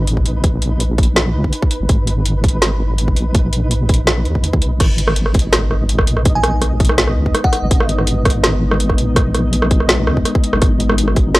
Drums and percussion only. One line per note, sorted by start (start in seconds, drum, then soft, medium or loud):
0.07 closed hi-hat medium
0.17 kick medium
0.26 closed hi-hat medium
0.44 kick loud
0.44 closed hi-hat medium
0.62 closed hi-hat medium
0.80 closed hi-hat medium
0.98 kick loud
0.98 closed hi-hat soft
1.03 closed hi-hat medium
1.16 snare loud
1.16 closed hi-hat medium
1.44 kick medium
1.53 closed hi-hat medium
1.62 kick medium
1.71 closed hi-hat medium
1.89 kick loud
1.89 closed hi-hat medium
2.07 closed hi-hat medium
2.26 closed hi-hat medium
2.44 kick loud
2.44 closed hi-hat soft
2.48 closed hi-hat medium
2.62 snare loud
2.62 closed hi-hat medium
2.98 closed hi-hat medium
3.08 kick medium
3.16 closed hi-hat medium
3.35 kick loud
3.35 closed hi-hat medium
3.53 closed hi-hat medium
3.71 closed hi-hat medium
3.89 kick loud
3.89 closed hi-hat soft
3.94 closed hi-hat medium
4.07 snare loud
4.07 closed hi-hat medium
4.25 closed hi-hat soft
4.35 kick medium
4.44 closed hi-hat medium
4.53 kick loud
4.62 closed hi-hat medium
4.80 kick loud
4.80 cross-stick medium
4.80 closed hi-hat medium
4.80 crash medium
4.98 closed hi-hat medium
5.08 cross-stick medium
5.16 closed hi-hat medium
5.26 cross-stick medium
5.34 kick loud
5.34 closed hi-hat soft
5.39 closed hi-hat medium
5.53 cross-stick medium
5.53 snare loud
5.53 closed hi-hat medium
5.71 cross-stick medium
5.89 closed hi-hat medium
5.99 kick medium
5.99 cross-stick medium
6.07 closed hi-hat medium
6.17 cross-stick medium
6.25 kick loud
6.25 closed hi-hat medium
6.43 cross-stick medium
6.43 closed hi-hat medium
6.62 cross-stick medium
6.62 closed hi-hat medium
6.80 kick loud
6.80 closed hi-hat soft
6.85 closed hi-hat medium
6.89 cross-stick medium
6.98 snare loud
6.98 closed hi-hat medium
7.08 cross-stick medium
7.26 kick medium
7.35 cross-stick medium
7.35 closed hi-hat medium
7.44 kick loud
7.53 cross-stick medium
7.53 closed hi-hat medium
7.71 kick loud
7.71 closed hi-hat medium
7.80 cross-stick medium
7.89 closed hi-hat medium
7.98 cross-stick soft
8.07 closed hi-hat medium
8.25 kick loud
8.25 cross-stick medium
8.25 closed hi-hat soft
8.30 closed hi-hat medium
8.44 cross-stick soft
8.44 snare loud
8.44 closed hi-hat medium
8.71 cross-stick medium
8.80 closed hi-hat medium
8.89 kick medium
8.89 cross-stick soft
8.98 closed hi-hat medium
9.16 kick loud
9.16 cross-stick medium
9.16 closed hi-hat medium
9.35 cross-stick soft
9.35 closed hi-hat medium
9.53 closed hi-hat medium
9.62 cross-stick medium
9.71 kick loud
9.71 closed hi-hat soft
9.80 cross-stick soft
9.89 snare loud
9.89 closed hi-hat medium
10.07 cross-stick medium
10.17 kick medium
10.25 cross-stick soft
10.25 closed hi-hat medium
10.35 kick loud
10.44 closed hi-hat medium
10.53 cross-stick medium
10.62 kick loud
10.62 cross-stick soft
10.62 closed hi-hat medium
10.80 closed hi-hat medium
10.89 cross-stick medium
10.98 closed hi-hat medium
11.08 cross-stick soft
11.16 kick loud
11.16 closed hi-hat soft
11.35 cross-stick medium
11.35 snare loud
11.35 closed hi-hat medium